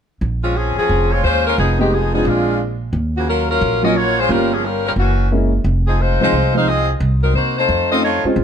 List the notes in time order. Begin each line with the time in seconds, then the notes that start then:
0.21 A#1
0.44 G#3 C4 C#4 F4
0.57 F3 C4 C#4 G#4
0.77 F3 C4 C#4 G#4, muted upright bass stroke
0.89 F1
1.12 G#3 C4 F4 C#5
1.24 D#2 G#3 C#4 F4 C5
1.47 G#3 C#4 F4 A#4
1.58 F1 F3 B3 D#4 G#4
1.79 D#3 G#3 B3 D#4 G4
1.94 F3 B3 D#4 G#4
2.13 F3 G#3 B3 C4 D4 D#4 F4 G#4
2.25 A#1 G#3 A#3 D4 F4
2.93 D#2
3.16 C#3 F3 A#3 F#4
3.28 F#3 C#4 F4 A#4
3.51 F#3 C#4 F4 A#4
3.61 A#1
3.83 F#3 A#3 C#4 F4 F#4 A#4 D#5
3.97 A#3 F4 F#4 C#5
4.20 G#3 C#4 F4 C5
4.29 G1 G3 A#3 C#4 F4 A#4
4.54 F3 A#3 C#4 G#4
4.65 G3 C#4 F4 A#4
4.87 G3 C#4 F4 A#4
4.96 F#1 E3 A#3 C#4 F#4
5.31 G#3 A#3 C#4 E4
5.64 F1
5.87 F3 C4 D#4 G#4
6.00 G#3 D#4 F4 C5
6.20 C2 F3 G#3 C4 D#4 F4 C5
6.32 C2
6.54 F3 G#3 C4 D#4 G#4 C5 F5
6.69 C4 F4 G#4 D#5
7.00 C2
7.23 F#3 C4 D#4 A#4
7.34 C3 A#3 D#4 F#4 C5
7.58 A3 D#4 F4 C5
7.69 F2
7.91 A3 C4 C#4 D#4 F4 A4 D#5
8.04 A3 D#4 F4 C#5
8.24 G#3 C4 C#4 F4, muted upright bass stroke
8.36 A#1